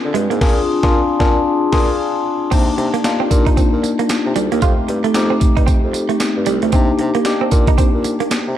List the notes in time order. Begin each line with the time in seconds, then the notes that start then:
Already playing: C4 D4 F4 G#4
0.05 D3
0.14 G2 G#3, closed hi-hat
0.30 G#2 A#3, closed hi-hat
0.41 A#2 D4 F4 G#4, kick, snare, crash
0.83 A#2 D4 F4 G#4, kick, snare
1.19 A#2 D4 F4 G#4, kick, snare
1.72 A#2 D4 F4 G#4, kick, snare, crash
2.51 C3 A#3 C4 D4 D#4 G4, kick, closed hi-hat, crash, tambourine
2.77 C3, muted clean electric guitar stroke, closed hi-hat
2.94 A#3, closed hi-hat
3.04 A#3 D4 D#4 F4, snare, clap, closed hi-hat, tambourine
3.20 C4
3.31 A#2, muted clean electric guitar stroke, kick, closed hi-hat, tambourine
3.47 D#4, kick, closed hi-hat
3.57 A#2 C4, kick, closed hi-hat, tambourine
3.73 A#2
3.83 muted clean electric guitar stroke, closed hi-hat, tambourine
3.99 A#3, closed hi-hat
4.09 muted clean electric guitar stroke, snare, clap, closed hi-hat, tambourine
4.26 C3
4.36 D2 G3, closed hi-hat, tambourine
4.52 D#2 A#3, closed hi-hat
4.62 F2 A3 C4 D#4 F4 G4, kick, closed hi-hat, tambourine
4.88 G2, muted clean electric guitar stroke, closed hi-hat
5.04 A3, closed hi-hat
5.14 F2 A3 C4 D#4 G4, snare, clap, closed hi-hat, tambourine
5.30 C4
5.40 muted clean electric guitar stroke, kick, closed hi-hat, tambourine
5.57 G2 D#4, kick, closed hi-hat
5.67 F2 C4, kick, closed hi-hat, tambourine
5.84 F2
5.93 muted clean electric guitar stroke, closed hi-hat, tambourine
6.09 A3, closed hi-hat
6.20 muted clean electric guitar stroke, snare, clap, closed hi-hat, tambourine
6.37 G2
6.46 C2 G3, closed hi-hat, tambourine
6.62 D2 A3, closed hi-hat
6.72 C3 A#3 C4 D4 D#4 G4, kick, closed hi-hat, tambourine
6.99 C3, muted clean electric guitar stroke, closed hi-hat
7.15 A#3, closed hi-hat
7.25 A#3 D4 D#4 G4, snare, clap, closed hi-hat, tambourine
7.41 C4
7.51 A#2, muted clean electric guitar stroke, kick, closed hi-hat, tambourine
7.67 D#4, kick, closed hi-hat
7.78 A#2 C4, kick, closed hi-hat, tambourine
7.94 A#2
8.04 muted clean electric guitar stroke, closed hi-hat, tambourine
8.20 A#3, closed hi-hat
8.31 muted clean electric guitar stroke, snare, clap, closed hi-hat, tambourine
8.47 C3